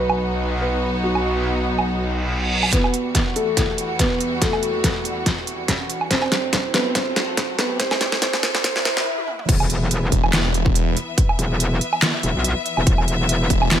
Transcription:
Already playing: wobble bass B1, string section B3 D#4 F#4
0.00 felt piano B4
0.10 low woodblock
0.61 felt piano B4
1.04 felt piano F#4
1.15 low woodblock
1.79 low woodblock
1.88 reverse cymbal
2.63 low woodblock
2.73 string section E2 E3 G3 F#4, felt piano B3 B4, kick, snare, closed hi-hat, riser
2.84 low woodblock
2.94 closed hi-hat
3.15 kick, snare, closed hi-hat
3.36 felt piano A3 A4, closed hi-hat
3.57 kick, snare, closed hi-hat
3.78 closed hi-hat
3.99 felt piano B3 B4, kick, snare, closed hi-hat
4.20 closed hi-hat
4.42 felt piano A3 A4, kick, snare, closed hi-hat
4.53 low woodblock
4.63 closed hi-hat
4.84 kick, snare, closed hi-hat
5.05 closed hi-hat
5.26 kick, snare, closed hi-hat
5.47 closed hi-hat
5.68 kick, snare, closed hi-hat
5.90 closed hi-hat
6.01 low woodblock
6.11 string section F#2 F#3 A3 C4, felt piano C4 C5, kick, snare, closed hi-hat
6.22 low woodblock
6.32 snare, closed hi-hat
6.53 kick, snare, closed hi-hat
6.74 felt piano B3 B4, snare, closed hi-hat
6.95 felt piano C4 C5, kick, snare, closed hi-hat
7.16 snare, closed hi-hat
7.37 kick, snare, closed hi-hat
7.58 felt piano B3 B4, snare, closed hi-hat
7.80 felt piano C4 C5, kick, snare, closed hi-hat
7.91 snare, low woodblock
8.01 snare, closed hi-hat
8.12 snare
8.22 felt piano C4 C5, kick, snare, closed hi-hat
8.33 snare
8.43 snare, closed hi-hat
8.55 snare
8.64 felt piano C4 C5, kick, snare, closed hi-hat, swell
8.76 snare
8.85 felt piano C4 C5, snare, closed hi-hat
8.97 snare
9.18 high tom
9.28 mid tom
9.39 mid tom
9.49 wobble bass E1, string section E3 B3 B4 E5, kick, closed hi-hat, crash, impact
9.60 low woodblock
9.70 closed hi-hat
9.91 closed hi-hat
10.12 detuned saw bass E1, kick, closed hi-hat
10.24 low woodblock
10.33 snare, clap, closed hi-hat
10.54 closed hi-hat
10.66 kick
10.75 closed hi-hat
10.97 closed hi-hat
11.18 kick, closed hi-hat
11.29 low woodblock
11.39 wobble bass E1, closed hi-hat
11.60 closed hi-hat
11.81 closed hi-hat
11.93 low woodblock
12.02 snare, clap, closed hi-hat
12.23 wobble bass E1, closed hi-hat
12.35 wobble bass B1
12.44 closed hi-hat
12.66 closed hi-hat
12.77 wobble bass E1, low woodblock
12.87 wobble bass E1, kick, closed hi-hat
12.98 low woodblock
13.08 closed hi-hat
13.29 closed hi-hat
13.50 detuned saw bass E1, kick, closed hi-hat
13.62 low woodblock
13.71 snare, clap, closed hi-hat

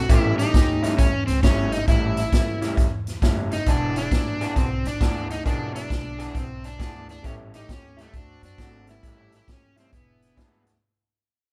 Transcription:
Already playing: electric slide guitar F#4
0.09 upright bass A1, clean electric guitar A2 G3 C#4 E4, upright piano E3 G3 A3 B3 C#4, horn section A3 C#4 G4, electric slide guitar E4, kick, snare, closed hi-hat
0.38 horn section A3 C#4 G4, electric slide guitar D#4, snare, closed hi-hat
0.54 upright bass D2, kick, snare, closed hi-hat
0.83 clean electric guitar A2 G3 C#4 E4, snare, closed hi-hat
0.98 upright bass E2, electric slide guitar C#4, kick, snare, closed hi-hat
1.27 upright bass C#2, electric slide guitar C4, snare, closed hi-hat
1.43 upright bass G1, clean electric guitar A2 G3 C#4 E4, electric slide guitar C#4, kick, snare, closed hi-hat
1.72 electric slide guitar D#4, snare, closed hi-hat
1.88 upright bass A1, clean electric guitar A2 G3 C#4 E4, electric slide guitar E4, kick, snare, closed hi-hat
2.17 snare, closed hi-hat
2.32 upright bass E2, upright piano G3 A3 B3 C#4 E4, kick, snare, closed hi-hat
2.62 clean electric guitar A2 G3 C#4 E4, snare, closed hi-hat
2.77 upright bass E2, kick, snare, closed hi-hat
3.07 snare, closed hi-hat
3.22 upright bass F#1, clean electric guitar A2 G3 C#4 E4, kick, snare, closed hi-hat
3.51 electric slide guitar D#4, snare, closed hi-hat
3.66 upright bass E1, clean electric guitar E3 B3 D4 G#4, horn section G#3 D4 E4, electric slide guitar D4, kick, snare, closed hi-hat
3.95 horn section G#3 D4 E4, electric slide guitar D4, snare, closed hi-hat
4.11 upright bass A1, upright piano F#3 G#3 B3 D4 E4, kick, snare, closed hi-hat
4.41 clean electric guitar E3 B3 D4 G#4, snare, closed hi-hat
4.56 upright bass B1, electric slide guitar C4, kick, snare, closed hi-hat
4.84 upright bass G#1, electric slide guitar D4, snare, closed hi-hat
5.01 upright bass D2, clean electric guitar E3 B3 D4 G#4, kick, snare, closed hi-hat
5.30 electric slide guitar D#4, snare, closed hi-hat
5.44 upright bass E1, clean electric guitar E3 B3 D4 G#4, upright piano F3 G3 A#3 C#4 D#4, electric slide guitar D4, kick, snare, closed hi-hat
5.74 upright piano F#3 G#3 B3 D4 E4, electric slide guitar D4, snare, closed hi-hat
5.90 upright bass B1, kick, snare, closed hi-hat
6.19 clean electric guitar E3 B3 D4 G#4, snare, closed hi-hat
6.35 upright bass B1, electric slide guitar C4, kick, snare, closed hi-hat
6.64 electric slide guitar D4, snare, closed hi-hat
6.79 upright bass D2, clean electric guitar E3 B3 D4 G#4, kick, snare, closed hi-hat
7.09 electric slide guitar D4, snare, closed hi-hat
7.22 upright bass A1, clean electric guitar A2 G3 C#4 E4, upright piano G3 A3 B3 C#4 E4, horn section A3 C#4 G4, electric slide guitar C#4, kick, snare, closed hi-hat
7.53 horn section A3 C#4 G4, electric slide guitar D#4, snare, closed hi-hat
7.69 upright bass D2, electric slide guitar C#4, kick, snare, closed hi-hat
7.97 clean electric guitar A2 G3 C#4 E4, snare, closed hi-hat
8.01 electric slide guitar A3
8.13 upright bass D2, horn section C4 D4 F#4, electric slide guitar D4, kick, snare, closed hi-hat
8.42 upright bass F#2, electric slide guitar D4, snare, closed hi-hat
8.58 upright bass G#1, clean electric guitar D3 A3 C4 F#4, kick, snare, closed hi-hat
8.87 upright piano G3 A3 B3 C#4 E4, electric slide guitar E4, snare, closed hi-hat
9.03 upright bass A1, clean electric guitar A2 G3 C#4 E4, horn section A3 C#4 G4, kick, snare, closed hi-hat
9.32 snare, closed hi-hat
9.36 electric slide guitar E4
9.48 upright bass E2, electric slide guitar C#4, kick, snare, closed hi-hat
9.76 clean electric guitar A2 G3 C#4 E4, electric slide guitar C4, snare, closed hi-hat
9.92 upright bass E1, horn section G#3 D4 E4, electric slide guitar B3, kick, snare, closed hi-hat
10.22 snare, closed hi-hat
10.36 upright bass D2, clean electric guitar E3 B3 D4 G#4, upright piano F#3 G#3 B3 D4 E4, kick, snare, closed hi-hat
10.67 snare, closed hi-hat

